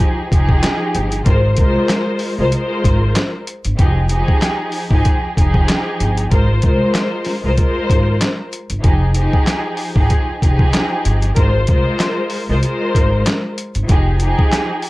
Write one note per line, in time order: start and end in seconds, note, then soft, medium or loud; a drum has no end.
0.00 0.27 F3 loud
0.00 0.28 D#4 medium
0.00 0.28 G4 medium
0.00 0.29 G#4 loud
0.00 kick medium
0.30 0.59 F1 medium
0.30 1.18 F3 loud
0.30 1.19 D#4 medium
0.30 1.19 G4 loud
0.30 1.20 G#4 loud
0.30 kick medium
0.30 closed hi-hat medium
0.49 kick medium
0.63 snare loud
0.63 clap medium
0.63 closed hi-hat loud
0.95 1.22 G1 medium
0.95 closed hi-hat medium
1.12 closed hi-hat medium
1.24 1.54 G#1 loud
1.24 1.54 G#3 medium
1.24 1.55 F4 medium
1.24 1.55 A#4 medium
1.24 1.56 C5 loud
1.24 kick loud
1.24 closed hi-hat medium
1.57 1.73 C2 medium
1.57 2.31 G#3 loud
1.57 2.31 F4 medium
1.57 2.32 A#4 medium
1.57 2.32 C5 loud
1.57 kick medium
1.57 closed hi-hat medium
1.89 snare loud
1.89 clap medium
1.89 closed hi-hat medium
2.19 open hi-hat medium
2.38 2.51 C2 medium
2.38 2.49 G#3 medium
2.38 2.50 F4 medium
2.38 2.51 A#4 medium
2.38 2.52 C5 medium
2.51 3.39 G#3 loud
2.51 3.40 F4 medium
2.51 3.40 A#4 medium
2.51 3.41 C5 loud
2.51 closed hi-hat medium
2.84 3.12 G#1 medium
2.84 kick medium
2.84 closed hi-hat medium
3.15 snare loud
3.15 clap medium
3.15 closed hi-hat loud
3.47 closed hi-hat medium
3.65 3.77 G1 medium
3.65 closed hi-hat medium
3.77 4.21 F1 loud
3.77 4.07 F3 loud
3.77 4.08 D#4 medium
3.77 4.08 G4 medium
3.77 4.08 G#4 loud
3.77 kick loud
3.77 closed hi-hat medium
4.08 4.83 F3 medium
4.08 4.83 D#4 medium
4.08 4.84 G4 loud
4.08 4.84 G#4 loud
4.08 closed hi-hat medium
4.28 kick medium
4.42 snare loud
4.42 clap medium
4.42 closed hi-hat medium
4.72 open hi-hat medium
4.89 5.03 G#1 medium
4.89 5.32 F3 loud
4.89 5.33 D#4 medium
4.89 5.33 G4 medium
4.89 5.34 G#4 loud
4.89 kick loud
5.05 kick medium
5.05 closed hi-hat medium
5.35 5.64 F1 medium
5.35 6.24 F3 loud
5.35 6.24 D#4 medium
5.35 6.25 G4 loud
5.35 6.25 G#4 loud
5.35 kick medium
5.35 closed hi-hat medium
5.54 kick medium
5.68 snare loud
5.68 clap medium
5.68 closed hi-hat loud
6.00 6.27 G1 medium
6.00 closed hi-hat medium
6.17 closed hi-hat medium
6.29 6.59 G#1 loud
6.29 6.60 G#3 medium
6.29 6.60 F4 medium
6.29 6.61 A#4 medium
6.29 6.61 C5 loud
6.29 kick loud
6.29 closed hi-hat medium
6.62 6.78 C2 medium
6.62 7.36 G#3 loud
6.62 7.37 F4 medium
6.62 7.37 A#4 medium
6.62 7.38 C5 loud
6.62 kick loud
6.62 closed hi-hat medium
6.94 snare loud
6.94 clap medium
6.94 closed hi-hat medium
7.25 snare soft
7.25 open hi-hat medium
7.43 7.56 C2 medium
7.43 7.55 G#3 medium
7.43 7.55 F4 medium
7.43 7.57 A#4 medium
7.43 7.58 C5 medium
7.56 8.45 G#3 loud
7.56 8.45 F4 medium
7.56 8.46 A#4 loud
7.56 8.46 C5 loud
7.56 kick medium
7.56 closed hi-hat medium
7.90 8.17 G#1 medium
7.90 kick medium
7.90 closed hi-hat medium
8.21 snare loud
8.21 clap medium
8.21 closed hi-hat loud
8.53 closed hi-hat medium
8.70 8.82 G1 medium
8.70 closed hi-hat medium
8.82 9.26 F1 loud
8.82 9.12 F3 loud
8.82 9.13 D#4 medium
8.82 9.13 G4 medium
8.82 9.14 G#4 medium
8.82 kick loud
8.82 closed hi-hat medium
9.14 9.88 F3 medium
9.14 9.89 D#4 medium
9.14 9.89 G4 loud
9.14 9.90 G#4 loud
9.14 closed hi-hat medium
9.33 kick medium
9.47 snare loud
9.47 clap medium
9.47 closed hi-hat medium
9.77 open hi-hat soft
9.94 10.08 G#1 medium
9.94 10.38 F3 medium
9.94 10.38 D#4 medium
9.94 10.39 G4 medium
9.94 10.39 G#4 loud
9.94 kick loud
10.10 kick medium
10.10 closed hi-hat medium
10.40 10.70 F1 medium
10.40 11.29 F3 loud
10.40 11.29 D#4 medium
10.40 11.30 G4 loud
10.40 11.30 G#4 loud
10.40 kick medium
10.40 closed hi-hat medium
10.59 kick medium
10.73 snare loud
10.73 clap medium
10.73 closed hi-hat loud
11.05 11.33 G1 medium
11.05 closed hi-hat medium
11.22 closed hi-hat medium
11.34 11.64 G#1 loud
11.34 11.65 G#3 medium
11.34 11.65 F4 medium
11.34 11.66 A#4 medium
11.34 11.66 C5 loud
11.34 kick loud
11.34 closed hi-hat medium
11.67 11.83 C2 medium
11.67 12.41 G#3 loud
11.67 12.42 F4 medium
11.67 12.42 A#4 medium
11.67 12.43 C5 loud
11.67 kick loud
11.67 closed hi-hat medium
11.99 snare loud
11.99 clap medium
11.99 closed hi-hat medium
12.30 open hi-hat medium
12.49 12.61 C2 medium
12.49 12.60 G#3 medium
12.49 12.61 F4 medium
12.49 12.62 A#4 medium
12.49 12.63 C5 medium
12.61 13.50 G#3 loud
12.61 13.50 F4 medium
12.61 13.51 A#4 medium
12.61 13.51 C5 loud
12.61 closed hi-hat medium
12.95 13.22 G#1 medium
12.95 kick medium
12.95 closed hi-hat medium
13.26 snare loud
13.26 clap medium
13.26 closed hi-hat loud
13.58 closed hi-hat medium
13.75 13.88 G1 medium
13.75 closed hi-hat medium
13.87 14.32 F1 loud
13.87 14.17 F3 medium
13.87 14.18 D#4 medium
13.87 14.18 G4 medium
13.87 14.19 G#4 loud
13.87 kick loud
13.87 closed hi-hat medium
14.19 14.90 F3 loud
14.19 14.90 D#4 medium
14.19 14.90 G4 loud
14.19 14.90 G#4 loud
14.19 closed hi-hat medium
14.39 kick medium
14.52 snare loud
14.52 clap medium
14.52 closed hi-hat medium
14.82 open hi-hat medium